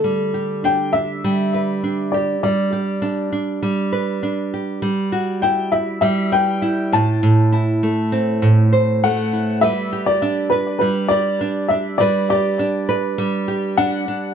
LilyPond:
<<
  \new Staff \with { instrumentName = "Upright piano" } { \time 4/4 \key g \major \tempo 4 = 100 r4 g''8 e''2 d''8 | d''2 r2 | r4 g''8 e''8 e''8 g''4 a''8~ | a''2. fis''4 |
e''8. d''8. b'8 b'8 d''4 e''8 | d''8 d''4. r4 fis''4 | }
  \new Staff \with { instrumentName = "Nylon-string guitar" } { \time 4/4 \key g \major g8 g'8 d'8 d'8 g8 b'8 d'8 g'8 | g8 g'8 d'8 d'8 g8 b'8 d'8 g'8 | g8 fis'8 e'8 e'8 g8 b'8 e'8 a,8 | a,8 e'8 a8 c'8 a,8 c''8 a8 e'8 |
<g b'>8 g'8 d'8 b'8 g8 g'8 d'8 d'8 | <g b'>8 g'8 d'8 b'8 g8 g'8 d'8 d'8 | }
>>